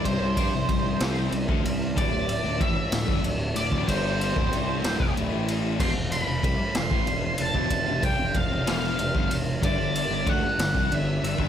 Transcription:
Already playing: string section C3 G3 G4 C5
0.04 fingered electric bass C2, distorted electric guitar C3 G3, lead electric guitar C5, kick, ride
0.20 fingered electric bass C2, distorted electric guitar C3 G3
0.37 fingered electric bass G2, distorted electric guitar G3 D4, kick, ride
0.53 fingered electric bass C2, distorted electric guitar C3 G3
0.69 fingered electric bass C2, distorted electric guitar C3 G3, kick, ride
0.84 fingered electric bass C2, distorted electric guitar C3 G3
1.00 fingered electric bass C2, distorted electric guitar C3 G3 C4, snare, ride
1.31 fingered electric bass C2, distorted electric guitar C3 G3, ride
1.48 fingered electric bass D2, distorted electric guitar D3 A3, kick
1.64 fingered electric bass C2, distorted electric guitar C3 G3, ride
1.95 fingered electric bass D1, distorted electric guitar D2 A2, string section D3 A3 F#4 D5, lead electric guitar D5, kick, ride
2.12 fingered electric bass D1, distorted electric guitar D2 A2
2.29 ride
2.43 fingered electric bass D1, distorted electric guitar D2 A2
2.59 fingered electric bass A1, distorted electric guitar A2 E3, lead electric guitar E5, kick, ride
2.75 muted distorted electric guitar stroke, muted fingered electric bass stroke
2.91 fingered electric bass D1, distorted electric guitar D2 A2, snare, ride
3.06 fingered electric bass G1, distorted electric guitar G2 D3, kick
3.23 fingered electric bass D1, distorted electric guitar D2 A2, ride
3.55 fingered electric bass D1, distorted electric guitar D2 A2, lead electric guitar D5, ride
3.71 fingered electric bass D1, distorted electric guitar D2 A2, kick
3.87 fingered electric bass G1, distorted electric guitar G2 D3 G3, lead electric guitar C5, kick, ride
4.21 ride
4.35 fingered electric bass D1, distorted electric guitar D2 A2, kick
4.51 fingered electric bass C2, distorted electric guitar C3 G3 C4, ride
4.83 fingered electric bass D1, distorted electric guitar D2 A2, snare, ride
4.99 fingered electric bass F1, distorted electric guitar F2 C3, kick
5.15 fingered electric bass D1, distorted electric guitar D2 A2, ride
5.32 fingered electric bass A1, distorted electric guitar A2 E3 A3
5.48 ride
5.78 fingered electric bass E1, distorted electric guitar E2 B2, string section C5 F5, lead electric guitar C6, kick, crash
5.96 fingered electric bass E1, distorted electric guitar F2 C3
6.12 lead electric guitar B5, ride
6.27 fingered electric bass E1, distorted electric guitar F2 C3
6.43 fingered electric bass C2, distorted electric guitar C3 G3, lead electric guitar B5, kick, ride
6.59 muted distorted electric guitar stroke, muted fingered electric bass stroke
6.75 fingered electric bass E1, distorted electric guitar F2 C3, lead electric guitar C6, snare, ride
6.91 fingered electric bass A1, distorted electric guitar A2 E3, kick
7.07 fingered electric bass E1, distorted electric guitar F2 C3, ride
7.38 fingered electric bass E1, distorted electric guitar F2 C3, lead electric guitar A5, ride
7.55 fingered electric bass E1, distorted electric guitar E2 B2, kick
7.70 distorted electric guitar F2 C3, kick, ride
7.87 fingered electric bass E1, distorted electric guitar F2 C3
8.02 fingered electric bass C2, distorted electric guitar C3 G3, lead electric guitar G5, kick, ride
8.18 fingered electric bass E1, distorted electric guitar F2 C3
8.34 fingered electric bass E1, distorted electric guitar F2 C3, lead electric guitar F5, kick, ride
8.50 fingered electric bass E1, distorted electric guitar F2 C3
8.66 fingered electric bass E1, distorted electric guitar E2 B2 E3, lead electric guitar F5, snare, ride
8.98 fingered electric bass E1, distorted electric guitar F2 C3, ride
9.15 fingered electric bass G1, distorted electric guitar G2 D3, kick
9.30 fingered electric bass E1, distorted electric guitar F2 C3, ride
9.61 fingered electric bass G1, distorted electric guitar G2 D3, string section D3 G3 G4 D5, lead electric guitar D5, kick, ride
9.78 fingered electric bass G1, distorted electric guitar G2 D3
9.95 ride
10.11 fingered electric bass G1, distorted electric guitar G2 D3
10.26 fingered electric bass D2, distorted electric guitar D3 A3, lead electric guitar F#5, kick, ride
10.42 muted distorted electric guitar stroke, muted fingered electric bass stroke
10.58 fingered electric bass G1, distorted electric guitar G2 D3, snare, ride
10.75 fingered electric bass C2, distorted electric guitar C3 G3, kick
10.91 fingered electric bass G1, distorted electric guitar G2 D3, lead electric guitar E5, ride
11.22 fingered electric bass G1, distorted electric guitar G2 D3, lead electric guitar E5, ride
11.36 fingered electric bass G1, distorted electric guitar G2 D3, kick

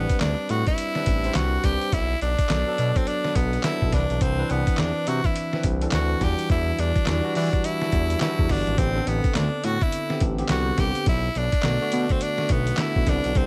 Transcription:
Already playing: tine electric piano G3 C4 D4 B4, tenor saxophone B3
0.09 kick, closed hi-hat
0.20 analog synth bass D2, tenor saxophone D4, snare, clap, closed hi-hat
0.49 analog synth bass A2, tenor saxophone F#4, closed hi-hat
0.66 tenor saxophone E4, kick, closed hi-hat
0.78 closed hi-hat
0.95 tine electric piano G3 C4 D4 B4, snare
1.06 analog synth bass A1, kick, closed hi-hat
1.24 tine electric piano G3 C4 D4 C5, closed hi-hat
1.34 analog synth bass C2, tenor saxophone F#4, snare, clap, closed hi-hat
1.64 analog synth bass C2, tine electric piano G3 C4 D4 B4, tenor saxophone G4, kick, snare, closed hi-hat
1.81 closed hi-hat
1.92 analog synth bass B1, tenor saxophone E4, kick, closed hi-hat
2.21 analog synth bass B1, tenor saxophone D4, closed hi-hat
2.38 kick, closed hi-hat
2.49 analog synth bass B1, tine electric piano F#3 B3 D4 A4, snare, clap, closed hi-hat
2.67 tine electric piano F#3 B3 D4 A4
2.78 analog synth bass B2, closed hi-hat
2.96 tenor saxophone C4, kick, closed hi-hat
3.07 tenor saxophone D4, closed hi-hat
3.24 tine electric piano F#3 B3 D4 B4, snare
3.35 analog synth bass B1, tenor saxophone B3, kick, closed hi-hat
3.53 closed hi-hat
3.63 tine electric piano F#3 B3 D4 A4, tenor saxophone E4, snare, clap, closed hi-hat
3.82 analog synth bass B1, kick
3.92 analog synth bass C2, tine electric piano E3 C4 D4 B4, tenor saxophone D4, kick, snare, closed hi-hat
4.10 analog synth bass B1, closed hi-hat
4.21 analog synth bass C2, tenor saxophone C4, kick, closed hi-hat
4.38 tine electric piano E3 C4 D4 B4
4.50 analog synth bass C2, tenor saxophone B3, closed hi-hat
4.67 kick, closed hi-hat
4.77 analog synth bass E2, tenor saxophone D4, snare, clap, closed hi-hat
5.07 analog synth bass C3, tenor saxophone F#4, closed hi-hat
5.24 tenor saxophone E4, kick, closed hi-hat
5.36 closed hi-hat
5.53 tine electric piano E3 C4 D4 B4, snare
5.63 analog synth bass C2, kick, closed hi-hat
5.81 tine electric piano E3 C4 D4 A4, closed hi-hat
5.91 analog synth bass D2, tenor saxophone F#4, snare, clap, closed hi-hat
6.21 analog synth bass E2, tine electric piano E3 G3 D4 F#4, tenor saxophone G4, kick, snare, closed hi-hat
6.39 closed hi-hat
6.50 analog synth bass E2, tenor saxophone E4, kick, closed hi-hat
6.79 analog synth bass E2, tenor saxophone D4, closed hi-hat
6.96 kick, closed hi-hat
7.06 analog synth bass E2, tine electric piano E3 G3 D4 F#4, snare, clap, closed hi-hat
7.24 tine electric piano E3 G3 D4 F#4
7.35 analog synth bass E3, tenor saxophone D4, open hi-hat
7.53 kick, closed hi-hat
7.64 tenor saxophone E4, closed hi-hat
7.81 tine electric piano E3 G3 D4 F#4, snare
7.92 analog synth bass E2, kick, closed hi-hat
8.10 closed hi-hat
8.20 tine electric piano E3 G3 D4 F#4, tenor saxophone E4, snare, clap, closed hi-hat
8.39 analog synth bass E2, kick
8.49 analog synth bass G1, tenor saxophone D4, kick, snare, open hi-hat
8.67 analog synth bass G#1, closed hi-hat
8.78 analog synth bass A1, tine electric piano D3 B3 C4 G4, tenor saxophone C4, kick, closed hi-hat
8.95 tine electric piano D3 B3 C4 A4
9.07 analog synth bass A1, tenor saxophone B3, closed hi-hat
9.24 kick, closed hi-hat
9.35 analog synth bass D2, tenor saxophone D4, snare, clap, closed hi-hat
9.64 analog synth bass A2, tenor saxophone F#4, closed hi-hat
9.81 tenor saxophone E4, kick, closed hi-hat
9.92 closed hi-hat
10.10 tine electric piano D3 B3 C4 G4, snare
10.20 analog synth bass A1, kick, closed hi-hat
10.38 tine electric piano D3 B3 C4 G4, closed hi-hat
10.49 analog synth bass C2, tenor saxophone F#4, snare, clap, closed hi-hat
10.78 analog synth bass C2, tine electric piano D3 B3 C4 G4, tenor saxophone G4, kick, snare, closed hi-hat
10.95 closed hi-hat
11.06 analog synth bass B1, tenor saxophone E4, kick, closed hi-hat
11.35 analog synth bass B1, tenor saxophone D4, closed hi-hat
11.52 kick, closed hi-hat
11.63 analog synth bass B1, tine electric piano D3 A3 B3 F#4, snare, clap, closed hi-hat
11.81 tine electric piano D3 A3 B3 F#4
11.92 analog synth bass B2, closed hi-hat
12.09 tenor saxophone C4, kick, closed hi-hat
12.21 tenor saxophone D4, closed hi-hat
12.38 tine electric piano D3 A3 B3 F#4, snare
12.49 analog synth bass B1, tenor saxophone B3, kick, closed hi-hat
12.67 closed hi-hat
12.77 tine electric piano D3 A3 B3 A4, tenor saxophone E4, snare, clap, closed hi-hat
12.96 analog synth bass B1, kick
13.07 analog synth bass C2, tine electric piano D3 B3 C4 E4, tenor saxophone D4, kick, snare, closed hi-hat
13.24 analog synth bass B1, closed hi-hat
13.35 analog synth bass C2, tenor saxophone C4, kick, closed hi-hat

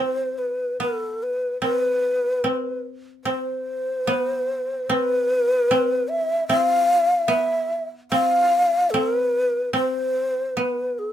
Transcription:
Already playing: koto C4 E4
0.00 shakuhachi C5
0.38 shakuhachi B4
0.80 koto B3, shakuhachi A4
1.23 shakuhachi B4
1.62 koto C4, shakuhachi B4
2.44 koto C4
3.25 koto C4, shakuhachi C5
4.07 koto B3
4.89 koto C4, shakuhachi B4
5.71 koto C4
6.08 shakuhachi E5
6.48 koto C4, shakuhachi F5
7.28 koto B3, shakuhachi E5
8.12 koto C4, shakuhachi F5
8.90 koto C4, shakuhachi A4
9.15 shakuhachi B4
9.73 koto C4, shakuhachi C5
10.57 koto B3, shakuhachi B4
10.99 shakuhachi A4

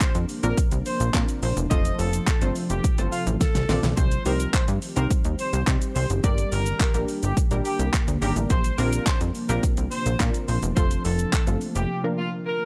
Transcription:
Already playing: ambient pad C3 F3 A#3 D4, synth stab A#3 C4 D4 F4 A#4
0.01 horn section C5, kick, clap, closed hi-hat, shaker
0.15 analog synth bass F2, closed hi-hat, shaker
0.29 open hi-hat, shaker
0.43 analog synth bass A#1, synth stab A#3 C4 D4 F4 A#4, horn section A#4, closed hi-hat, shaker
0.57 kick, closed hi-hat, shaker
0.71 analog synth bass C2, closed hi-hat, shaker
0.86 horn section C5, open hi-hat, shaker
1.00 analog synth bass A#1, closed hi-hat, shaker
1.14 analog synth bass A#2, synth stab A#3 C4 D4 F4 A#4, kick, clap, closed hi-hat, shaker
1.29 closed hi-hat, shaker
1.43 analog synth bass A#1, horn section C5, open hi-hat, shaker
1.57 analog synth bass E1, closed hi-hat, shaker
1.71 analog synth bass F1, ambient pad C3 A3 F4, synth stab A3 C4 F4 A4 C5, horn section D#5, kick, closed hi-hat, shaker
1.85 closed hi-hat, shaker
1.99 analog synth bass F1, horn section A4, open hi-hat, shaker
2.13 closed hi-hat, shaker
2.27 horn section A4, kick, clap, closed hi-hat, shaker
2.41 analog synth bass G1, synth stab A3 C4 F4 A4 C5, closed hi-hat, shaker
2.55 open hi-hat, shaker
2.70 analog synth bass F1, horn section G4, closed hi-hat, shaker
2.84 kick, closed hi-hat, shaker
2.98 analog synth bass G1, synth stab A3 C4 F4 A4 C5, closed hi-hat, shaker
3.12 horn section F4, open hi-hat, shaker
3.27 analog synth bass A1, closed hi-hat, shaker
3.41 horn section A4, kick, snare, closed hi-hat, shaker
3.55 analog synth bass C2, snare, closed hi-hat, shaker
3.69 analog synth bass A#1, synth stab A3 C4 F4 A4 D5, snare, open hi-hat, shaker
3.83 analog synth bass B1, snare, closed hi-hat, shaker
3.97 analog synth bass C2, ambient pad D#3 G3 C4 G4, horn section C5, kick, closed hi-hat, shaker
4.12 closed hi-hat, shaker
4.26 analog synth bass C2, synth stab G3 C4 D#4 G4 C5, horn section A#4, open hi-hat, shaker
4.40 closed hi-hat, shaker
4.54 horn section C5, kick, clap, closed hi-hat, shaker
4.68 analog synth bass G2, closed hi-hat, shaker
4.82 open hi-hat, shaker
4.96 analog synth bass C2, synth stab G3 C4 D#4 G4 C5, horn section A#4, closed hi-hat, shaker
5.11 kick, closed hi-hat, shaker
5.25 analog synth bass D#2, closed hi-hat, shaker
5.39 horn section C5, open hi-hat, shaker
5.53 analog synth bass C2, closed hi-hat, shaker
5.67 analog synth bass C3, synth stab G3 C4 D#4 G4 C5, kick, clap, closed hi-hat, shaker
5.82 closed hi-hat, shaker
5.96 analog synth bass C2, horn section C5, open hi-hat, shaker
6.10 analog synth bass F#1, closed hi-hat, shaker
6.24 analog synth bass G1, ambient pad D3 A#3, synth stab G3 A#3 D4 G4 A#4, horn section D5, kick, closed hi-hat, shaker
6.38 closed hi-hat, shaker
6.52 analog synth bass G1, horn section A#4, open hi-hat, shaker
6.66 closed hi-hat, shaker
6.80 horn section A#4, kick, clap, closed hi-hat, shaker
6.94 analog synth bass A#1, synth stab G3 A#3 D4 G4 A#4, closed hi-hat, shaker
7.08 open hi-hat, shaker
7.23 analog synth bass G1, horn section G4, closed hi-hat, shaker
7.37 kick, closed hi-hat, shaker
7.51 analog synth bass A#1, synth stab G3 A#3 D4 G4 A#4, closed hi-hat, shaker
7.65 horn section G4, open hi-hat, shaker
7.79 analog synth bass C2, closed hi-hat, shaker
7.94 kick, clap, closed hi-hat, shaker
8.08 analog synth bass D2, closed hi-hat, shaker
8.22 analog synth bass G#1, synth stab G3 A#3 D4 G4 A#4, horn section G4, open hi-hat, shaker
8.36 analog synth bass A1, closed hi-hat, shaker
8.50 analog synth bass A#1, ambient pad C3 F3 D4, horn section C5, kick, closed hi-hat, shaker
8.64 closed hi-hat, shaker
8.78 analog synth bass A#1, synth stab A#3 C4 D4 F4 A#4, horn section A#4, open hi-hat, shaker
8.93 closed hi-hat, shaker
9.07 horn section C5, kick, clap, closed hi-hat, shaker
9.21 analog synth bass F2, closed hi-hat, shaker
9.35 open hi-hat, shaker
9.49 analog synth bass A#1, synth stab A#3 C4 D4 F4 G4, horn section A#4, closed hi-hat, shaker
9.63 kick, closed hi-hat, shaker
9.77 analog synth bass C2, closed hi-hat, shaker
9.92 horn section C5, open hi-hat, shaker
10.06 analog synth bass A#1, closed hi-hat, shaker
10.20 analog synth bass A#2, synth stab A#3 C4 D4 F4 A#4, kick, clap, closed hi-hat, shaker
10.34 closed hi-hat, shaker
10.48 analog synth bass A#1, horn section C5, open hi-hat, shaker
10.63 analog synth bass E1, closed hi-hat, shaker
10.76 analog synth bass F1, synth stab F3 A3 C4 F4 A4, ambient pad A3 F4, horn section C5, kick, closed hi-hat, shaker
10.91 closed hi-hat, shaker
11.05 analog synth bass F1, horn section A4, open hi-hat, shaker
11.19 closed hi-hat, shaker
11.33 horn section A4, kick, clap, closed hi-hat, shaker
11.47 analog synth bass G1, synth stab F3 A3 C4 F4 A4, closed hi-hat, shaker
11.61 open hi-hat, shaker
11.76 analog synth bass F1, horn section G4, closed hi-hat, shaker
11.89 ambient pad D3 F3 A#3
12.04 synth stab F3 A#3 D4 F4 A#4
12.18 horn section F4
12.46 horn section A#4

